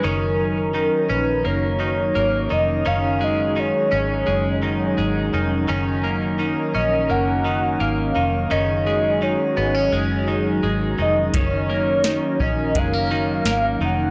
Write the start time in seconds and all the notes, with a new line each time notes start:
Already playing: G#3
0.04 F#1 D#3 F#3 C#4 D#4 A#4 A#5
0.74 D#3
1.09 A#1 C#4 B4
1.45 F#1 A#3 C#5
1.80 D#3
2.15 G#1 A#3
2.50 F1 D#3 D#5
2.86 F#1 D#3 C#4 G#4 F5
3.21 G#3 D#5
3.56 D#3 C#5
3.92 G#1 C#4
4.26 F#1 G#3
4.63 D#3
4.98 G#1 G#3
5.34 F1 D#3
5.68 F#1 D#3 C#4 A#4
6.04 A#3
6.39 D#3
6.75 A#1 C#4 D#5
7.10 F#1 A#3 F#5
7.45 D#3
7.80 G#1 A#3 F5
8.15 F1 D#3
8.51 F#1 D#3 F#3 C#4 D#4 G#4 D#5
8.87 G#3
9.22 D#3 C#5
9.57 G#1 B3
9.75 C#4
9.92 F#1 G#3
10.28 D#3
10.63 G#1 G#3
10.99 F1 D#3 D#5
11.33 F#1 D#3 F#3 C#4 A#4 C#5, kick, closed hi-hat
11.69 A#3
12.04 D#3, snare, closed hi-hat
12.40 A#1 C#4 D#5, kick
12.75 F#1 G#3 F5, kick, closed hi-hat
12.93 A#3
13.11 D#3
13.45 G#1 A#3, snare, closed hi-hat
13.81 F1 D#3
13.85 F#5